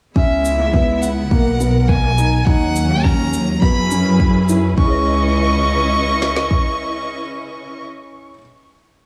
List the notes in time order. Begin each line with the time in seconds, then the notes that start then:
0.16 C#2 C#3 G#3 B3 C#4 E4 E5, kick
0.45 shaker
0.59 mid tom
0.74 B3, kick
1.02 F#5, shaker
1.31 B1 A#3 A#4, kick
1.60 B3, shaker
1.88 G#5, kick, mid tom
2.04 mid tom
2.18 D#4, shaker
2.46 D#2 F#3 C#4 D#4 F#5, kick
2.76 shaker
2.90 mid tom
3.04 C#4 A#5, kick
3.33 shaker
3.62 F#2 B3 C#4 E4 G#4 B4 B5, kick
3.91 C#4, shaker
4.20 kick
4.49 E4, shaker
4.78 C#2 C#3 C#4 E4 B4 D#5 C#6, kick
4.82 E4
4.86 G#4 C#5
6.22 snare
6.36 snare
6.51 kick